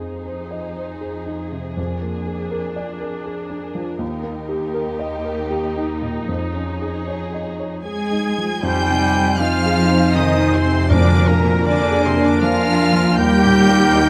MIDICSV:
0, 0, Header, 1, 12, 480
1, 0, Start_track
1, 0, Key_signature, -4, "minor"
1, 0, Tempo, 750000
1, 1135, Time_signature, 3, 2, 24, 8
1, 3041, Tempo, 773196
1, 5921, Tempo, 755668
1, 8908, End_track
2, 0, Start_track
2, 0, Title_t, "Violin section"
2, 0, Program_c, 0, 48
2, 0, Note_on_c, 0, 72, 50
2, 1113, Note_off_c, 0, 72, 0
2, 1146, Note_on_c, 0, 70, 49
2, 3973, Note_off_c, 0, 70, 0
2, 3998, Note_on_c, 0, 73, 58
2, 4945, Note_off_c, 0, 73, 0
2, 4963, Note_on_c, 0, 92, 73
2, 5421, Note_off_c, 0, 92, 0
2, 5444, Note_on_c, 0, 91, 95
2, 5917, Note_on_c, 0, 89, 91
2, 5921, Note_off_c, 0, 91, 0
2, 6397, Note_on_c, 0, 87, 81
2, 6402, Note_off_c, 0, 89, 0
2, 6640, Note_off_c, 0, 87, 0
2, 6645, Note_on_c, 0, 84, 81
2, 6882, Note_on_c, 0, 86, 92
2, 6884, Note_off_c, 0, 84, 0
2, 7123, Note_off_c, 0, 86, 0
2, 7123, Note_on_c, 0, 82, 77
2, 7364, Note_off_c, 0, 82, 0
2, 7369, Note_on_c, 0, 86, 80
2, 7603, Note_off_c, 0, 86, 0
2, 7611, Note_on_c, 0, 84, 76
2, 7728, Note_off_c, 0, 84, 0
2, 7739, Note_on_c, 0, 86, 73
2, 7852, Note_off_c, 0, 86, 0
2, 7853, Note_on_c, 0, 89, 92
2, 8328, Note_on_c, 0, 91, 112
2, 8331, Note_off_c, 0, 89, 0
2, 8908, Note_off_c, 0, 91, 0
2, 8908, End_track
3, 0, Start_track
3, 0, Title_t, "Flute"
3, 0, Program_c, 1, 73
3, 5447, Note_on_c, 1, 80, 61
3, 5898, Note_off_c, 1, 80, 0
3, 5923, Note_on_c, 1, 80, 58
3, 6394, Note_off_c, 1, 80, 0
3, 6397, Note_on_c, 1, 80, 52
3, 6870, Note_off_c, 1, 80, 0
3, 6878, Note_on_c, 1, 80, 61
3, 7352, Note_off_c, 1, 80, 0
3, 7362, Note_on_c, 1, 80, 59
3, 7835, Note_off_c, 1, 80, 0
3, 7842, Note_on_c, 1, 80, 56
3, 8326, Note_on_c, 1, 79, 78
3, 8336, Note_off_c, 1, 80, 0
3, 8908, Note_off_c, 1, 79, 0
3, 8908, End_track
4, 0, Start_track
4, 0, Title_t, "Violin section"
4, 0, Program_c, 2, 48
4, 0, Note_on_c, 2, 68, 43
4, 2538, Note_off_c, 2, 68, 0
4, 2564, Note_on_c, 2, 67, 64
4, 3967, Note_off_c, 2, 67, 0
4, 3985, Note_on_c, 2, 68, 50
4, 4938, Note_off_c, 2, 68, 0
4, 4965, Note_on_c, 2, 80, 59
4, 5422, Note_off_c, 2, 80, 0
4, 5438, Note_on_c, 2, 79, 76
4, 5913, Note_on_c, 2, 77, 74
4, 5919, Note_off_c, 2, 79, 0
4, 6390, Note_off_c, 2, 77, 0
4, 6396, Note_on_c, 2, 75, 65
4, 6639, Note_off_c, 2, 75, 0
4, 6639, Note_on_c, 2, 72, 70
4, 6880, Note_on_c, 2, 74, 70
4, 6881, Note_off_c, 2, 72, 0
4, 7113, Note_on_c, 2, 70, 67
4, 7117, Note_off_c, 2, 74, 0
4, 7350, Note_on_c, 2, 74, 78
4, 7359, Note_off_c, 2, 70, 0
4, 7593, Note_on_c, 2, 72, 70
4, 7598, Note_off_c, 2, 74, 0
4, 7712, Note_on_c, 2, 74, 59
4, 7720, Note_off_c, 2, 72, 0
4, 7836, Note_on_c, 2, 77, 74
4, 7839, Note_off_c, 2, 74, 0
4, 8316, Note_on_c, 2, 79, 90
4, 8323, Note_off_c, 2, 77, 0
4, 8908, Note_off_c, 2, 79, 0
4, 8908, End_track
5, 0, Start_track
5, 0, Title_t, "Oboe"
5, 0, Program_c, 3, 68
5, 5446, Note_on_c, 3, 72, 58
5, 5898, Note_off_c, 3, 72, 0
5, 5917, Note_on_c, 3, 72, 61
5, 6392, Note_off_c, 3, 72, 0
5, 6401, Note_on_c, 3, 72, 65
5, 6872, Note_off_c, 3, 72, 0
5, 6876, Note_on_c, 3, 70, 58
5, 7350, Note_off_c, 3, 70, 0
5, 7362, Note_on_c, 3, 70, 67
5, 7836, Note_off_c, 3, 70, 0
5, 7840, Note_on_c, 3, 70, 70
5, 8315, Note_off_c, 3, 70, 0
5, 8321, Note_on_c, 3, 70, 69
5, 8908, Note_off_c, 3, 70, 0
5, 8908, End_track
6, 0, Start_track
6, 0, Title_t, "Clarinet"
6, 0, Program_c, 4, 71
6, 5447, Note_on_c, 4, 63, 61
6, 5899, Note_off_c, 4, 63, 0
6, 5924, Note_on_c, 4, 63, 59
6, 6396, Note_off_c, 4, 63, 0
6, 6404, Note_on_c, 4, 63, 59
6, 6883, Note_on_c, 4, 62, 67
6, 6892, Note_off_c, 4, 63, 0
6, 7353, Note_off_c, 4, 62, 0
6, 7357, Note_on_c, 4, 62, 57
6, 7833, Note_off_c, 4, 62, 0
6, 7846, Note_on_c, 4, 62, 66
6, 8322, Note_on_c, 4, 63, 73
6, 8331, Note_off_c, 4, 62, 0
6, 8908, Note_off_c, 4, 63, 0
6, 8908, End_track
7, 0, Start_track
7, 0, Title_t, "French horn section"
7, 0, Program_c, 5, 60
7, 5445, Note_on_c, 5, 60, 67
7, 5447, Note_on_c, 5, 63, 73
7, 6857, Note_off_c, 5, 60, 0
7, 6858, Note_off_c, 5, 63, 0
7, 6878, Note_on_c, 5, 62, 71
7, 6879, Note_on_c, 5, 58, 68
7, 8299, Note_off_c, 5, 62, 0
7, 8325, Note_on_c, 5, 63, 83
7, 8908, Note_off_c, 5, 58, 0
7, 8908, Note_off_c, 5, 63, 0
7, 8908, End_track
8, 0, Start_track
8, 0, Title_t, "Viola section"
8, 0, Program_c, 6, 48
8, 0, Note_on_c, 6, 63, 39
8, 1110, Note_off_c, 6, 63, 0
8, 1135, Note_on_c, 6, 62, 44
8, 2540, Note_off_c, 6, 62, 0
8, 2561, Note_on_c, 6, 63, 63
8, 4939, Note_off_c, 6, 63, 0
8, 4962, Note_on_c, 6, 68, 58
8, 5421, Note_off_c, 6, 68, 0
8, 5448, Note_on_c, 6, 55, 75
8, 5921, Note_on_c, 6, 65, 70
8, 5923, Note_off_c, 6, 55, 0
8, 6404, Note_off_c, 6, 65, 0
8, 6411, Note_on_c, 6, 63, 67
8, 6642, Note_on_c, 6, 60, 64
8, 6647, Note_off_c, 6, 63, 0
8, 6883, Note_off_c, 6, 60, 0
8, 6885, Note_on_c, 6, 62, 68
8, 7120, Note_off_c, 6, 62, 0
8, 7129, Note_on_c, 6, 58, 67
8, 7367, Note_off_c, 6, 58, 0
8, 7369, Note_on_c, 6, 62, 65
8, 7607, Note_off_c, 6, 62, 0
8, 7611, Note_on_c, 6, 60, 62
8, 7724, Note_on_c, 6, 62, 63
8, 7729, Note_off_c, 6, 60, 0
8, 7842, Note_on_c, 6, 65, 80
8, 7845, Note_off_c, 6, 62, 0
8, 8325, Note_on_c, 6, 67, 86
8, 8326, Note_off_c, 6, 65, 0
8, 8908, Note_off_c, 6, 67, 0
8, 8908, End_track
9, 0, Start_track
9, 0, Title_t, "Grand piano"
9, 0, Program_c, 7, 0
9, 0, Control_c, 7, 64, 127
9, 0, Note_on_c, 7, 41, 32
9, 0, Note_on_c, 7, 60, 27
9, 0, Note_on_c, 7, 68, 28
9, 99, Note_off_c, 7, 60, 0
9, 164, Note_on_c, 7, 72, 34
9, 259, Note_off_c, 7, 68, 0
9, 326, Note_on_c, 7, 75, 32
9, 423, Note_off_c, 7, 72, 0
9, 487, Note_on_c, 7, 72, 29
9, 586, Note_off_c, 7, 75, 0
9, 647, Note_on_c, 7, 68, 33
9, 747, Note_off_c, 7, 72, 0
9, 807, Note_on_c, 7, 63, 34
9, 908, Note_off_c, 7, 68, 0
9, 973, Note_on_c, 7, 48, 27
9, 1068, Note_off_c, 7, 63, 0
9, 1109, Note_off_c, 7, 41, 0
9, 1131, Note_on_c, 7, 41, 38
9, 1135, Note_off_c, 7, 48, 0
9, 1148, Control_c, 7, 64, 0
9, 1244, Control_c, 7, 64, 127
9, 1292, Note_on_c, 7, 58, 27
9, 1450, Note_on_c, 7, 68, 31
9, 1551, Note_off_c, 7, 58, 0
9, 1607, Note_on_c, 7, 70, 41
9, 1708, Note_off_c, 7, 68, 0
9, 1768, Note_on_c, 7, 74, 38
9, 1865, Note_off_c, 7, 70, 0
9, 1921, Note_on_c, 7, 70, 38
9, 2025, Note_off_c, 7, 74, 0
9, 2084, Note_on_c, 7, 68, 37
9, 2180, Note_off_c, 7, 70, 0
9, 2239, Note_on_c, 7, 62, 41
9, 2341, Note_off_c, 7, 68, 0
9, 2399, Note_on_c, 7, 53, 38
9, 2497, Note_off_c, 7, 62, 0
9, 2538, Note_off_c, 7, 41, 0
9, 2551, Note_on_c, 7, 39, 49
9, 2561, Note_off_c, 7, 53, 0
9, 2578, Control_c, 7, 64, 0
9, 2688, Control_c, 7, 64, 127
9, 2711, Note_on_c, 7, 58, 35
9, 2872, Note_on_c, 7, 67, 42
9, 2971, Note_off_c, 7, 58, 0
9, 3034, Note_on_c, 7, 70, 48
9, 3131, Note_off_c, 7, 67, 0
9, 3190, Note_on_c, 7, 75, 49
9, 3289, Note_off_c, 7, 70, 0
9, 3347, Note_on_c, 7, 70, 41
9, 3447, Note_off_c, 7, 75, 0
9, 3508, Note_on_c, 7, 67, 38
9, 3605, Note_off_c, 7, 70, 0
9, 3671, Note_on_c, 7, 63, 38
9, 3765, Note_off_c, 7, 67, 0
9, 3827, Note_on_c, 7, 46, 33
9, 3927, Note_off_c, 7, 63, 0
9, 3961, Note_off_c, 7, 39, 0
9, 3990, Note_off_c, 7, 46, 0
9, 3993, Note_on_c, 7, 41, 39
9, 4006, Control_c, 7, 64, 0
9, 4120, Control_c, 7, 64, 127
9, 4157, Note_on_c, 7, 61, 26
9, 4323, Note_on_c, 7, 68, 31
9, 4418, Note_off_c, 7, 61, 0
9, 4486, Note_on_c, 7, 73, 36
9, 4583, Note_off_c, 7, 68, 0
9, 4644, Note_on_c, 7, 75, 34
9, 4744, Note_off_c, 7, 73, 0
9, 4807, Note_on_c, 7, 73, 31
9, 4902, Note_off_c, 7, 75, 0
9, 4965, Note_on_c, 7, 68, 30
9, 5063, Note_off_c, 7, 73, 0
9, 5127, Note_on_c, 7, 63, 32
9, 5223, Note_off_c, 7, 68, 0
9, 5294, Note_on_c, 7, 53, 27
9, 5384, Note_off_c, 7, 63, 0
9, 5423, Note_off_c, 7, 41, 0
9, 5448, Note_on_c, 7, 41, 56
9, 5451, Note_off_c, 7, 53, 0
9, 5459, Control_c, 7, 64, 0
9, 5545, Control_c, 7, 64, 127
9, 5608, Note_on_c, 7, 48, 38
9, 5770, Note_on_c, 7, 60, 39
9, 5861, Note_off_c, 7, 48, 0
9, 5929, Note_on_c, 7, 63, 55
9, 6024, Note_off_c, 7, 60, 0
9, 6091, Note_on_c, 7, 68, 48
9, 6184, Note_off_c, 7, 63, 0
9, 6250, Note_on_c, 7, 60, 42
9, 6344, Note_off_c, 7, 68, 0
9, 6406, Note_on_c, 7, 48, 42
9, 6503, Note_off_c, 7, 60, 0
9, 6565, Note_on_c, 7, 60, 48
9, 6661, Note_off_c, 7, 48, 0
9, 6725, Note_on_c, 7, 48, 42
9, 6820, Note_off_c, 7, 60, 0
9, 6859, Note_off_c, 7, 41, 0
9, 6884, Note_off_c, 7, 48, 0
9, 6884, Note_on_c, 7, 41, 57
9, 6895, Control_c, 7, 64, 0
9, 7013, Control_c, 7, 64, 127
9, 7036, Note_on_c, 7, 53, 42
9, 7207, Note_on_c, 7, 58, 45
9, 7296, Note_off_c, 7, 53, 0
9, 7360, Note_on_c, 7, 62, 54
9, 7462, Note_off_c, 7, 58, 0
9, 7520, Note_on_c, 7, 68, 50
9, 7619, Note_off_c, 7, 62, 0
9, 7687, Note_on_c, 7, 58, 48
9, 7780, Note_off_c, 7, 68, 0
9, 7849, Note_on_c, 7, 53, 49
9, 7943, Note_off_c, 7, 58, 0
9, 8004, Note_on_c, 7, 58, 51
9, 8104, Note_off_c, 7, 53, 0
9, 8169, Note_on_c, 7, 53, 46
9, 8262, Note_off_c, 7, 58, 0
9, 8302, Note_off_c, 7, 41, 0
9, 8328, Note_on_c, 7, 39, 61
9, 8329, Note_off_c, 7, 53, 0
9, 8339, Control_c, 7, 64, 0
9, 8440, Control_c, 7, 64, 127
9, 8498, Note_on_c, 7, 46, 47
9, 8652, Note_on_c, 7, 58, 53
9, 8748, Note_off_c, 7, 46, 0
9, 8811, Note_on_c, 7, 63, 55
9, 8903, Note_off_c, 7, 58, 0
9, 8908, Note_off_c, 7, 39, 0
9, 8908, Note_off_c, 7, 63, 0
9, 8908, End_track
10, 0, Start_track
10, 0, Title_t, "Cello section"
10, 0, Program_c, 8, 48
10, 0, Note_on_c, 8, 41, 37
10, 2539, Note_off_c, 8, 41, 0
10, 2564, Note_on_c, 8, 39, 57
10, 3967, Note_off_c, 8, 39, 0
10, 3986, Note_on_c, 8, 41, 47
10, 4944, Note_off_c, 8, 41, 0
10, 4963, Note_on_c, 8, 56, 60
10, 5421, Note_off_c, 8, 56, 0
10, 5447, Note_on_c, 8, 55, 70
10, 5919, Note_on_c, 8, 53, 78
10, 5923, Note_off_c, 8, 55, 0
10, 6403, Note_off_c, 8, 53, 0
10, 6406, Note_on_c, 8, 51, 71
10, 6640, Note_on_c, 8, 48, 62
10, 6644, Note_off_c, 8, 51, 0
10, 6882, Note_off_c, 8, 48, 0
10, 6883, Note_on_c, 8, 50, 67
10, 7120, Note_on_c, 8, 46, 72
10, 7123, Note_off_c, 8, 50, 0
10, 7357, Note_off_c, 8, 46, 0
10, 7359, Note_on_c, 8, 50, 76
10, 7598, Note_off_c, 8, 50, 0
10, 7601, Note_on_c, 8, 48, 68
10, 7724, Note_off_c, 8, 48, 0
10, 7724, Note_on_c, 8, 50, 62
10, 7841, Note_on_c, 8, 53, 81
10, 7845, Note_off_c, 8, 50, 0
10, 8325, Note_off_c, 8, 53, 0
10, 8326, Note_on_c, 8, 55, 88
10, 8908, Note_off_c, 8, 55, 0
10, 8908, End_track
11, 0, Start_track
11, 0, Title_t, "Timpani"
11, 0, Program_c, 10, 47
11, 6885, Note_on_c, 10, 41, 81
11, 7580, Note_off_c, 10, 41, 0
11, 8908, End_track
12, 0, Start_track
12, 0, Title_t, "Double bass section"
12, 0, Program_c, 11, 48
12, 5449, Note_on_c, 11, 41, 60
12, 8303, Note_off_c, 11, 41, 0
12, 8326, Note_on_c, 11, 39, 72
12, 8908, Note_off_c, 11, 39, 0
12, 8908, End_track
0, 0, End_of_file